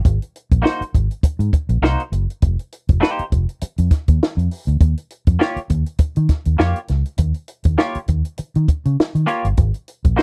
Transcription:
0.05 fingered electric bass G#1, kick, closed hi-hat
0.22 closed hi-hat
0.36 closed hi-hat
0.52 fingered electric bass A#1, kick, closed hi-hat
0.62 clean electric guitar A#3 D#4 F#4 C5, snare
0.81 muted fingered electric bass stroke, closed hi-hat
0.95 fingered electric bass G#1, kick, closed hi-hat
1.11 closed hi-hat
1.23 muted fingered electric bass stroke, kick, closed hi-hat
1.39 fingered electric bass G#2, closed hi-hat
1.53 kick, closed hi-hat
1.69 fingered electric bass A#1, closed hi-hat
1.82 fingered electric bass C2, clean electric guitar A#3 D#4 F#4 C5, snare
2.00 closed hi-hat
2.12 fingered electric bass F#1, closed hi-hat
2.30 closed hi-hat
2.42 fingered electric bass F1, kick, closed hi-hat
2.59 closed hi-hat
2.72 closed hi-hat
2.88 fingered electric bass F1, kick, closed hi-hat
3.01 clean electric guitar A#3 D#4 G4 C5, snare
3.19 muted fingered electric bass stroke, closed hi-hat
3.32 fingered electric bass F1, kick, closed hi-hat
3.49 closed hi-hat
3.61 muted fingered electric bass stroke, closed hi-hat
3.78 fingered electric bass F2, closed hi-hat
3.91 kick, snare, closed hi-hat
4.08 fingered electric bass D#2, kick, closed hi-hat
4.23 snare
4.37 fingered electric bass F2, closed hi-hat
4.51 open hi-hat
4.67 fingered electric bass D2, closed hi-hat
4.80 fingered electric bass D#2, kick, closed hi-hat
4.97 closed hi-hat
5.10 closed hi-hat
5.27 fingered electric bass F2, kick, closed hi-hat
5.39 clean electric guitar A#3 F4 G4 C#5, snare
5.56 muted fingered electric bass stroke, closed hi-hat
5.70 fingered electric bass D#2, kick, closed hi-hat
5.86 closed hi-hat
5.98 muted fingered electric bass stroke, kick, closed hi-hat
6.16 fingered electric bass D#3, closed hi-hat
6.29 kick, snare, closed hi-hat
6.45 fingered electric bass D#2, closed hi-hat
6.59 fingered electric bass F2, clean electric guitar A#3 F4 G4 C#5, snare
6.76 closed hi-hat
6.88 fingered electric bass C#2, snare, closed hi-hat
7.05 closed hi-hat
7.18 fingered electric bass D#2, kick, closed hi-hat
7.34 closed hi-hat
7.48 closed hi-hat
7.64 fingered electric bass D#2, kick, closed hi-hat
7.78 clean electric guitar A#3 F4 G4 C#5, snare
7.95 muted fingered electric bass stroke, closed hi-hat
8.08 fingered electric bass D#2, kick, closed hi-hat
8.25 closed hi-hat
8.38 muted fingered electric bass stroke, closed hi-hat
8.55 fingered electric bass D#3, closed hi-hat
8.68 kick, closed hi-hat
8.85 fingered electric bass C#3, closed hi-hat
9.00 snare
9.15 fingered electric bass D#3, closed hi-hat
9.27 clean electric guitar A#3 F4 G4 C#5, snare, closed hi-hat
9.45 fingered electric bass G1, closed hi-hat
9.57 fingered electric bass G#1, kick, closed hi-hat
9.74 closed hi-hat
9.88 closed hi-hat
10.05 fingered electric bass A#1, kick, closed hi-hat
10.17 clean electric guitar A#3 D#4 F#4 C5, snare

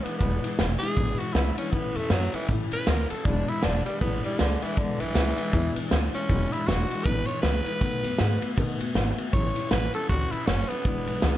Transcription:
0.04 steel-string acoustic guitar E3 G#3 D4 E4, tenor saxophone B3, ride
0.18 upright bass E1, steel-string acoustic guitar E2 B2 E3 G#3 D4 E4, tenor saxophone B3, kick, ride
0.43 steel-string acoustic guitar E3 G#3 D4 E4, muted upright bass stroke, ride
0.58 upright bass E1, steel-string acoustic guitar E3 G#3 D4 E4, snare, ride
0.79 steel-string acoustic guitar G#3 D4 E4, tenor saxophone G#4, ride
0.83 steel-string acoustic guitar E3
0.97 upright bass A1, steel-string acoustic guitar E2 B2 E3 G#3 D4 E4, kick, ride
1.19 steel-string acoustic guitar E3 G#3 D4 E4, tenor saxophone F#4, ride
1.33 upright bass C#2, steel-string acoustic guitar E3 G#3 D4 E4, tenor saxophone E4, snare, ride
1.57 steel-string acoustic guitar E3 G#3 D4 E4, tenor saxophone C#4, muted upright bass stroke, ride
1.72 upright bass A1, steel-string acoustic guitar A2 E3 G3 C#4 E4, tenor saxophone B3, kick, ride
1.95 upright bass E2, steel-string acoustic guitar G3 C#4 E4, tenor saxophone A3, ride
2.10 upright bass F#2, steel-string acoustic guitar E3 G3 C#4 E4, tenor saxophone F#3, snare, ride
2.34 tenor saxophone E3, steel-string acoustic guitar G3 C#4 E4, muted upright bass stroke, ride
2.48 upright bass A2, steel-string acoustic guitar A2 E3 G3 C#4 E4, kick, ride
2.71 steel-string acoustic guitar C#4 E4, tenor saxophone B4, muted upright bass stroke, ride
2.76 steel-string acoustic guitar G3
2.87 upright bass D2, steel-string acoustic guitar E3 G3 C#4 E4, tenor saxophone A#4, snare, ride
3.10 steel-string acoustic guitar G3 C#4 E4, tenor saxophone A4, ride
3.25 upright bass E1, steel-string acoustic guitar E2 B2 E3 G#3 D4 E4, tenor saxophone D4, kick, ride
3.48 steel-string acoustic guitar E3 G#3 D4 E4, tenor saxophone E4, muted upright bass stroke, ride
3.63 upright bass E1, steel-string acoustic guitar E3 G#3 D4 E4, tenor saxophone D4, snare, ride
3.86 steel-string acoustic guitar E3 G#3 D4 E4, tenor saxophone G3, muted upright bass stroke, ride
4.01 upright bass A1, steel-string acoustic guitar E2 B2 E3 G#3 D4 E4, tenor saxophone B3, kick, ride
4.24 tenor saxophone G3, steel-string acoustic guitar G#3 D4 E4, muted upright bass stroke, ride
4.28 steel-string acoustic guitar E3
4.39 upright bass C#2, tenor saxophone D3, steel-string acoustic guitar E3 G#3 D4 E4, snare, ride
4.62 tenor saxophone E3, steel-string acoustic guitar E3 G#3 D4 E4, ride
4.77 upright bass E1, steel-string acoustic guitar E2 B2 E3 G#3 D4 E4, tenor saxophone D3, kick, ride
5.00 upright bass B1, tenor saxophone E3, steel-string acoustic guitar E3 G#3 D4 E4, ride
5.15 upright bass C#2, steel-string acoustic guitar E3 G#3 D4 E4, snare, ride
5.37 steel-string acoustic guitar E3 G#3 D4 E4, ride
5.53 steel-string acoustic guitar E2 B2 E3 G#3 D4 E4, upright bass E2, kick, ride
5.76 steel-string acoustic guitar E3 G#3 D4 E4, muted upright bass stroke, ride
5.90 upright bass D2, steel-string acoustic guitar E3 G#3 D4 E4, snare, ride
6.13 steel-string acoustic guitar E3 G#3 D4 E4, tenor saxophone C#4, ride
6.29 upright bass E1, steel-string acoustic guitar E2 B2 E3 G#3 D4 E4, kick, ride
6.51 steel-string acoustic guitar E3 G#3 D4 E4, tenor saxophone E4, muted upright bass stroke, ride
6.66 upright bass E1, steel-string acoustic guitar E3 G#3 D4 E4, tenor saxophone F#4, snare, ride
6.89 steel-string acoustic guitar E3 G#3 D4 E4, ride
7.04 upright bass A1, steel-string acoustic guitar E2 B2 E3 G#3 D4 E4, tenor saxophone B4, kick, ride
7.27 steel-string acoustic guitar E3 G#3 D4 E4, tenor saxophone C#5, ride
7.42 upright bass C#2, steel-string acoustic guitar E3 G#3 D4 E4, tenor saxophone B4, snare, ride
7.65 steel-string acoustic guitar E3 G#3 D4 E4, ride
7.81 upright bass B1, steel-string acoustic guitar B2 D#3 A3 B3 F#4, kick, ride
8.03 upright bass F#2, steel-string acoustic guitar A3 B3 F#4, ride
8.18 upright bass G#2, steel-string acoustic guitar D#3 A3 B3 F#4, snare, ride
8.41 steel-string acoustic guitar A3 B3 F#4, muted upright bass stroke, ride
8.56 steel-string acoustic guitar B2 D#3 A3 B3 F#4, upright bass B2, kick, ride
8.79 steel-string acoustic guitar A3 B3 F#4, muted upright bass stroke, ride
8.94 upright bass G#1, steel-string acoustic guitar D#3 A3 B3 F#4, snare, ride
9.18 steel-string acoustic guitar A3 B3 F#4, muted upright bass stroke, ride
9.33 upright bass A1, steel-string acoustic guitar A2 E3 G3 C#4 E4, tenor saxophone C#5, kick, ride
9.56 steel-string acoustic guitar G3 C#4 E4, muted upright bass stroke, ride
9.71 upright bass A1, steel-string acoustic guitar E3 G3 C#4 E4, tenor saxophone B4, snare, ride
9.94 steel-string acoustic guitar G3 C#4 E4, tenor saxophone A4, muted upright bass stroke, ride
10.09 upright bass D2, steel-string acoustic guitar A2 E3 G3 C#4 E4, tenor saxophone F#4, kick, ride
10.31 steel-string acoustic guitar G3 C#4 E4, tenor saxophone E4, muted upright bass stroke, ride
10.46 upright bass F#1, steel-string acoustic guitar E3 G3 C#4 E4, tenor saxophone C#4, snare, ride
10.68 steel-string acoustic guitar G3 C#4 E4, tenor saxophone B3, ride
10.85 upright bass E1, steel-string acoustic guitar E2 B2 E3 G#3 D4 E4, kick, ride
11.07 upright bass B1, steel-string acoustic guitar E3 G#3 D4 E4, ride
11.22 upright bass C#2, steel-string acoustic guitar E3 G#3 D4 E4, snare, ride

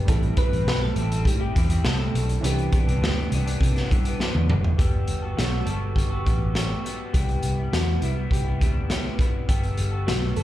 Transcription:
Already playing: synth keys G4
0.05 picked electric bass A1, clean electric guitar A2 G3, upright piano G3 C4 E4, synth keys A4, kick, closed hi-hat
0.10 clean electric guitar C4 E4, upright piano A4
0.23 closed hi-hat
0.37 clean electric guitar A2 G3 C4 E4, synth keys B4, kick, closed hi-hat
0.51 picked electric bass A1, clean electric guitar C4 E4, closed hi-hat
0.55 clean electric guitar G3
0.66 picked electric bass B1, clean electric guitar A2 G3 C4 E4, snare
0.82 synth keys A4
0.95 picked electric bass A1, clean electric guitar A2 G3 C4, closed hi-hat
0.99 clean electric guitar E4
1.10 clean electric guitar G3 C4 E4, closed hi-hat
1.25 picked electric bass A2, synth keys G4, kick, closed hi-hat
1.39 clean electric guitar G3 C4 E4, synth keys G4
1.54 picked electric bass E2, clean electric guitar A2 G3 C4 E4, kick, closed hi-hat
1.69 clean electric guitar C4 E4, closed hi-hat
1.73 clean electric guitar G3
1.84 picked electric bass C2, clean electric guitar A2 G3 C4 E4, synth keys A4, snare
2.00 synth keys A4
2.14 picked electric bass B1, closed hi-hat
2.29 closed hi-hat
2.41 picked electric bass C2, clean electric guitar C3 E3 B3 D4, upright piano E3 C4 D4, synth keys G4, closed hi-hat
2.46 upright piano B4
2.58 closed hi-hat
2.72 clean electric guitar C3 E3 B3 D4, kick, closed hi-hat
2.87 picked electric bass C2, clean electric guitar E3 B3 D4, closed hi-hat
3.01 picked electric bass D2, clean electric guitar C3 E3 B3 D4, snare
3.31 picked electric bass C2, clean electric guitar C3 E3 B3, closed hi-hat
3.35 clean electric guitar D4
3.46 clean electric guitar E3 B3 D4, closed hi-hat
3.61 picked electric bass C3, kick, closed hi-hat
3.75 clean electric guitar E3 B3 D4, snare, closed hi-hat
3.89 picked electric bass G2, clean electric guitar C3 E3 B3 D4, kick, closed hi-hat
4.04 clean electric guitar E3 B3 D4, closed hi-hat
4.20 clean electric guitar C3 E3 B3 D4, snare
4.35 picked electric bass E2, high tom
4.50 picked electric bass F#1, mid tom
4.64 floor tom
4.78 picked electric bass G1, clean electric guitar G3 B3 A4, synth keys G4, kick, closed hi-hat
5.08 picked electric bass G1, closed hi-hat
5.22 clean electric guitar B3 F#4 A4
5.37 picked electric bass B1, clean electric guitar G3 B3 F#4 A4, synth keys F#4, snare, closed hi-hat
5.66 picked electric bass G1, clean electric guitar G3 B3 F#4, synth keys A4, closed hi-hat
5.70 clean electric guitar A4
5.96 picked electric bass G1, synth keys G4, kick, closed hi-hat
6.10 clean electric guitar F#4 A4
6.14 clean electric guitar B3
6.25 picked electric bass A1, clean electric guitar G3 B3 F#4 A4, kick, closed hi-hat
6.54 clean electric guitar G3 B3 F#4 A4, snare, closed hi-hat
6.83 clean electric guitar G3 B3 F#4 A4, closed hi-hat
7.13 picked electric bass C2, clean electric guitar C3 G3 B3 E4, synth keys G4, kick, closed hi-hat
7.29 closed hi-hat
7.43 picked electric bass C2, closed hi-hat
7.57 clean electric guitar G3 B3 E4
7.72 picked electric bass E2, clean electric guitar C3 G3 B3 E4, synth keys F#4, snare, closed hi-hat
7.86 clean electric guitar G3 B3 E4
8.01 picked electric bass C2, clean electric guitar C3 G3 B3 E4, synth keys E4, closed hi-hat
8.15 clean electric guitar B3 E4
8.19 clean electric guitar G3
8.31 picked electric bass C2, synth keys G4, kick, closed hi-hat
8.44 clean electric guitar G3 B3 E4
8.59 picked electric bass D2, clean electric guitar C3 G3 B3 E4, kick, closed hi-hat
8.89 clean electric guitar C3 G3 B3 E4, snare, closed hi-hat
9.18 clean electric guitar C3 G3 B3 E4, kick, closed hi-hat
9.48 picked electric bass G1, clean electric guitar G3 B3 A4, synth keys G4, kick, closed hi-hat
9.63 closed hi-hat
9.77 picked electric bass G1, closed hi-hat
9.91 clean electric guitar B3 F#4 A4
10.06 picked electric bass B1, clean electric guitar G3 B3 F#4 A4, synth keys F#4, snare, closed hi-hat
10.36 picked electric bass G1, clean electric guitar G3 B3 F#4 A4, synth keys A4, closed hi-hat

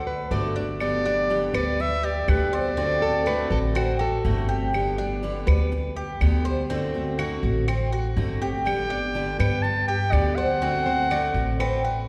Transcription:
Already playing: upright bass D2, cuban tres A4, clarinet F#5
0.07 nylon-string guitar B4
0.31 upright bass G1, steel-string acoustic guitar D3 A3 D4 F#4, nylon-string guitar A4, cuban tres D5
0.56 steel-string acoustic guitar A3 D4 F#4, cuban tres D4
0.80 steel-string acoustic guitar D3 G3 B3 G4, clarinet D5, claves
1.05 steel-string acoustic guitar G3 B3 G4, cuban tres D4
1.30 steel-string acoustic guitar D3 G3 B3 G4
1.54 upright bass D2, steel-string acoustic guitar G3 B3 G4, cuban tres B4, clarinet D5, claves
1.80 clarinet E5, muted steel-string acoustic guitar stroke
2.03 cuban tres G4, clarinet D5
2.28 upright bass D2, steel-string acoustic guitar D3 G3 B3 G4, clarinet B4, claves
2.53 steel-string acoustic guitar G3 B3 G4, cuban tres C5, clarinet D5
2.77 steel-string acoustic guitar D3 A3 C4 F#4, cuban tres C4
3.02 steel-string acoustic guitar A3 C4 F#4, nylon-string guitar A4
3.26 steel-string acoustic guitar D3 A3 C4 F#4, cuban tres F#4, nylon-string guitar B4, claves
3.50 upright bass A1, steel-string acoustic guitar A3 C4 F#4, nylon-string guitar A4
3.75 cuban tres C4, nylon-string guitar F#4, muted steel-string acoustic guitar stroke, claves
3.99 cuban tres F#4, nylon-string guitar A4
4.24 upright bass G1, steel-string acoustic guitar D3 A3 C4 F#4
4.49 steel-string acoustic guitar A3 C4 F#4, cuban tres G4
4.73 steel-string acoustic guitar D3 G3 B3 G4, claves
4.98 steel-string acoustic guitar G3 B3 G4, cuban tres D4
5.23 steel-string acoustic guitar D3 G3 B3 G4
5.47 upright bass D2, steel-string acoustic guitar G3 B3 G4, cuban tres B4, claves
5.72 muted steel-string acoustic guitar stroke
5.96 cuban tres G4
6.21 upright bass D2, steel-string acoustic guitar D3 G3 B3 G4, claves
6.45 steel-string acoustic guitar G3 B3 G4, cuban tres C5
6.70 steel-string acoustic guitar D3 A3 C4 F#4, cuban tres C4
6.94 steel-string acoustic guitar A3 C4 F#4
7.18 steel-string acoustic guitar D3 A3 C4 F#4, cuban tres F#4, claves
7.43 upright bass A1, steel-string acoustic guitar A3 C4 F#4
7.68 cuban tres C4, muted steel-string acoustic guitar stroke, claves
7.93 cuban tres F#4
8.16 upright bass G1, steel-string acoustic guitar D3 A3 C4 F#4
8.41 steel-string acoustic guitar A3 C4 F#4, cuban tres G4
8.65 steel-string acoustic guitar D3 G3 B3 G4, clarinet G5, claves
8.90 steel-string acoustic guitar G3 B3 G4, cuban tres D4
9.14 steel-string acoustic guitar D3 G3 B3 G4
9.39 upright bass G2, steel-string acoustic guitar G3 B3 G4, cuban tres B4, clarinet G5, claves
9.62 clarinet A5, muted steel-string acoustic guitar stroke
9.88 cuban tres G4, clarinet G5
10.12 upright bass D2, steel-string acoustic guitar D3 G3 B3 G4, clarinet D5, claves
10.36 steel-string acoustic guitar G3 B3 G4, cuban tres C5, clarinet F#5
10.61 steel-string acoustic guitar D3 A3 C4 F#4, cuban tres C4
10.86 steel-string acoustic guitar A3 C4 F#4, nylon-string guitar C5
11.10 steel-string acoustic guitar D3 A3 C4 F#4, cuban tres F#4, nylon-string guitar D5, claves
11.34 upright bass A1, steel-string acoustic guitar A3 C4 F#4
11.60 cuban tres C4, nylon-string guitar B4, muted steel-string acoustic guitar stroke, claves
11.85 cuban tres F#4

